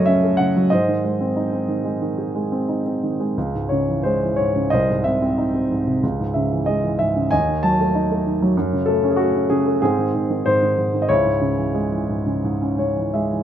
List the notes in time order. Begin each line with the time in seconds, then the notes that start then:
Already playing: F#2 C#3 F#3 A3 A4 C#5 D#5
0.06 C#4 E5
0.23 A3
0.37 C#3 F#5
0.56 F#3
0.70 G#2 C5 D#5
0.88 D#3
1.04 G#3
1.21 C4
1.36 D#4
1.53 C4
1.68 D#3
1.85 G#3
2.02 D#3
2.18 G#4
2.35 G#3
2.52 C4
2.69 D#4
2.86 C4
3.03 D#3
3.20 G#3
3.37 C#2
3.55 G#2
3.69 C#3 C#5
3.88 E3
4.03 G#3 C5
4.23 E3
4.36 G#2 C#5
4.56 C#3
4.70 C2 C5 D#5
4.89 G#2
5.04 C3 E5
5.22 C4
5.38 D#4
5.54 C4
5.71 G#2
5.87 C3
6.03 C#2
6.20 G#2
6.34 C#3 E5
6.52 E3
6.66 G#3 D#5
6.84 E3
6.99 G#2 E5
7.16 C#3
7.31 D#2 D#5 G#5
7.48 D#3
7.63 F#3 A5
7.79 A3
7.95 D#4
8.11 A3
8.26 D#3
8.42 F#3
8.57 F#2
8.73 C#3
8.86 A3 A4
9.03 C#4
9.10 G#4
9.16 A3 F#4
9.35 C#4
9.50 C#3 G#4
9.66 A3
9.82 G#2 C4 G#4
9.98 D#3
10.14 G#2
10.30 D#3
10.46 G#2 C5
10.62 D#3
10.78 G#2
10.94 D#3
11.02 D#5
11.09 C#2 E4 C#5
11.25 G#2
11.41 C#3
11.57 E3
11.74 G#3
11.91 E3
12.09 G#2
12.26 C#3
12.44 G#2
12.62 C#4
12.79 C#3 C#5
12.96 E3
13.14 G#3 E5
13.31 E3